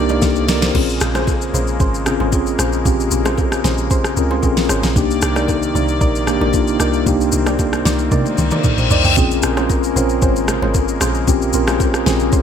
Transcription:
Already playing: C2 C3 D#3 A#3 D4 D#4 F4 G4 D5
0.09 D#4 A#4 D5, high bongo, low bongo, shaker
0.22 kick, snare, high bongo, shaker
0.36 A4, shaker
0.48 D#4 A#4 D5, snare, high bongo, shaker
0.62 C5, snare, shaker
0.75 A#1 C#3 G#3 C4 C#4 F4 G#4, kick, crash, low conga
0.89 shaker
1.00 A#1, cross-stick, shaker
1.15 C#4 G#4 C5, cross-stick, low bongo, shaker
1.27 kick, high bongo, shaker
1.41 shaker
1.54 A#1 C#4 G#4 C5, low conga, shaker
1.67 shaker
1.80 G#1 C#4 G#4 C5, kick, shaker
1.94 shaker
2.06 C4 C#4 F4 G#4, cross-stick, low conga, shaker
2.20 G#1 C#4 G#4 C5, high bongo, low bongo
2.32 C4 C#4 F4 G#4, kick, high bongo, shaker
2.46 shaker
2.59 A#1 C#4 G#4 C5, cross-stick, shaker
2.73 shaker
2.86 A#1 C4 C#4 F4 G4, kick, low conga, shaker
3.00 shaker
3.11 A#1, shaker
3.25 C#4 G#4 C5, cross-stick, low bongo, shaker
3.38 kick, high bongo, shaker
3.52 cross-stick, shaker
3.64 A#1 C#4 G#4 C5, snare, low conga, shaker
3.78 shaker
3.90 C#4 G#4 C5, kick, shaker
4.04 cross-stick, shaker
4.17 C#2 C4 C#4 F4 A#4, low conga, shaker
4.31 C#4 G#4 C5, high bongo, low bongo
4.43 A#1 C4 C#4 F4 G#4, kick, high bongo, shaker
4.57 snare, shaker
4.69 G#1 C#4 G#4 C5, cross-stick, shaker
4.83 A#1, snare, shaker
4.96 C2 C3 D#3 A#3 D4 D#4 G4 D5, kick, low conga, shaker
5.11 shaker
5.22 C2, cross-stick, shaker
5.36 D#4 A#4 D5, cross-stick, low bongo, shaker
5.48 kick, high bongo, shaker
5.63 shaker
5.75 C2 D#4 A#4 D5, low conga, shaker
5.88 shaker
6.01 A#1 D#4 A#4 D5, kick, shaker
6.15 shaker
6.27 A#3 D4 D#4 G4, cross-stick, low conga, shaker
6.41 A#1 D#4 A#4 D5, high bongo, low bongo
6.53 A#3 D4 D#4 F4, kick, high bongo, shaker
6.67 shaker
6.80 C2 D#4 A#4 D5, cross-stick, shaker
6.93 shaker
7.06 C2 A#3 C4 D4 D#4 G4, kick, low conga, shaker
7.21 shaker
7.32 C2, shaker
7.46 D#4 A#4 D5, cross-stick, low bongo, shaker
7.59 kick, high bongo, shaker
7.73 cross-stick, shaker
7.85 C2 D#4 A#4 D5, snare, low conga, shaker
7.99 shaker
8.11 C3 D#4 A#4 D5, kick, high tom, reverse cymbal, shaker
8.25 high tom, shaker
8.38 C2, mid tom, low conga, shaker
8.51 D#4 A#4 D5, mid tom, high bongo, low bongo, shaker
8.64 kick, mid tom, high bongo, shaker
8.78 A#1 C5, mid tom, shaker
8.90 C2 D#4 A#4 D5 D#5, floor tom, shaker
9.04 C2 G5, floor tom, shaker
9.17 A#1 C#3 G#3 A#3 C4 C#4 F4 G#4, kick, low conga, shaker
9.31 shaker
9.43 A#1 C4 C#4 F4 A#4, cross-stick, shaker
9.57 C#4 G#4 C5, cross-stick, low bongo, shaker
9.69 kick, high bongo, shaker
9.83 shaker
9.96 A#1 C4 C#4 F4 G#4 A#4 C5, low conga, shaker
10.09 shaker
10.22 G#1 C#4 G#4 C5, kick, shaker
10.36 shaker
10.48 cross-stick, low conga, shaker
10.62 G#1 C#4 G#4 C5, low bongo
10.74 kick, high bongo, shaker
10.88 shaker
11.01 A#1 C#4 G#4 C5, cross-stick, high bongo, shaker
11.15 shaker
11.28 A#1 C4 C#4 F4 G4, kick, low conga, shaker
11.42 shaker
11.53 A#1 C4 C#4 F4 A#4, shaker
11.67 C#4 G#4 C5, cross-stick, low bongo, shaker
11.80 kick, high bongo, shaker
11.94 cross-stick, shaker
12.06 A#1 C4 C#4 F4 G#4 C5, snare, low conga, shaker
12.20 shaker
12.32 C#4 G#4 C5, kick, shaker

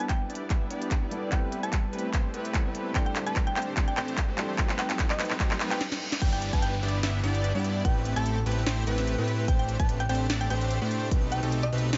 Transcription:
Already playing: G3 B3 D4 E4 A4 B4, riser
0.00 B3 D4 E4 G4 B4
0.09 G5, kick, clap, closed hi-hat
0.30 B3 D4 E4 G4 D5, closed hi-hat
0.35 closed hi-hat
0.50 B3 D4 E4 G4 E5, kick, clap, closed hi-hat
0.70 B3 D4 E4 G4 D5, closed hi-hat
0.82 closed hi-hat
0.91 kick, clap, closed hi-hat
1.02 B3 D4 E4 G4 D5
1.10 G3 B3 D4 E4 A4, closed hi-hat
1.30 G3 A3 B3 C4 E4 G4 A4 B4 G5, kick, clap, closed hi-hat
1.34 A4
1.52 closed hi-hat
1.63 A3 C4 E4 G4 A4 A5, closed hi-hat
1.73 kick, clap, closed hi-hat
1.93 A3 C4 E4 G4 B4, closed hi-hat
1.99 closed hi-hat
2.13 A3 C4 E4 G4 C5, kick, clap, closed hi-hat
2.34 A3 C4 E4 G4 B4, closed hi-hat
2.45 closed hi-hat
2.53 G3 B3 C4 E4 A4, kick, clap, closed hi-hat
2.65 A3 C4 E4 G4 B4
2.75 closed hi-hat
2.93 A2 G3 A3 C4 D4 E4 G4 C5 G5, kick, clap, closed hi-hat
2.97 A4
3.06 G5
3.16 clap, closed hi-hat
3.26 A3 C4 D4 G4 B4 A5, closed hi-hat
3.36 kick, clap, closed hi-hat
3.47 G5
3.56 A3 C4 D4 G4 C5 G5, clap, closed hi-hat
3.62 closed hi-hat
3.77 A3 C4 D4 G4 D5, kick, clap, closed hi-hat
3.88 G5
3.97 A3 C4 D4 G4 C5 G5, clap, closed hi-hat
4.08 closed hi-hat
4.17 kick, clap, closed hi-hat
4.29 A3 C4 D4 G4 C5
4.37 G3 C4 D4 E4 A4, clap, closed hi-hat
4.56 G3 A3 C4 D#4 F#4 G4 A4 B4, kick, clap, closed hi-hat
4.69 clap
4.79 G5, clap, closed hi-hat
4.90 A3 C4 D#4 G4 A4, clap, closed hi-hat
4.99 kick, clap, closed hi-hat
5.10 D#5, clap
5.19 A3 C4 D#4 G4 B4, clap, closed hi-hat
5.25 closed hi-hat
5.30 clap
5.40 A3 C4 D#4 G4 C5, kick, clap, closed hi-hat, reverse cymbal
5.51 clap
5.60 A3 C4 D#4 G4 B4, clap, closed hi-hat
5.71 G5, clap, closed hi-hat
5.81 snare
5.92 snare
6.12 snare
6.21 G1 E3 B3 D4 E4 G4 D5 G5, kick, closed hi-hat, crash, downlifter
6.33 G5
6.42 closed hi-hat
6.53 G1 B3 D4 E4 G4 B4 A5, kick, closed hi-hat
6.62 G5, closed hi-hat
6.83 G1 B3 D4 E4 G4 D5, closed hi-hat
6.88 closed hi-hat
7.03 G1 B3 D4 E4 G4 E5, snare, closed hi-hat
7.23 G1 B3 D4 E4 G4 D5, closed hi-hat
7.35 closed hi-hat
7.44 closed hi-hat
7.55 G2 B3 D4 E4 G4 D5
7.64 closed hi-hat
7.85 A1 C3 A3 C4 E4 G4 B4 G5, kick, closed hi-hat
8.05 closed hi-hat
8.16 A1 A3 C4 E4 G4 A4 A5, closed hi-hat
8.26 closed hi-hat
8.46 A1 A3 C4 E4 G4 B4, closed hi-hat
8.52 closed hi-hat
8.66 A1 A3 C4 E4 G4 C5, snare, closed hi-hat
8.87 A1 A3 C4 E4 G4 B4, closed hi-hat
8.98 snare, closed hi-hat
9.07 closed hi-hat
9.18 A2 A3 C4 E4 G4 B4
9.28 closed hi-hat
9.48 A1 A3 C4 D4 G4 C5 G5, kick, closed hi-hat
9.59 G5
9.69 closed hi-hat
9.79 A1 A3 C4 D4 G4 B4 A5, kick, closed hi-hat
9.89 closed hi-hat
10.00 G5
10.09 A1 A3 C4 D4 G4 C5 G5, closed hi-hat
10.15 closed hi-hat
10.30 A1 A3 C4 D4 G4 D5, snare, closed hi-hat
10.41 G5
10.50 A1 A3 C4 D4 G4 C5 G5, closed hi-hat
10.61 closed hi-hat
10.71 closed hi-hat
10.82 A2 A3 C4 D4 G4 C5
10.91 closed hi-hat
11.11 B1 A3 C4 D#4 G4 B4, kick, closed hi-hat
11.32 G5, closed hi-hat
11.43 B1 A3 C4 D#4 G4 A4, closed hi-hat
11.52 closed hi-hat
11.63 D#5
11.73 B1 A3 C4 D#4 G4 B4, closed hi-hat
11.78 closed hi-hat
11.93 B1 A3 C4 D#4 G4 C5, snare, closed hi-hat

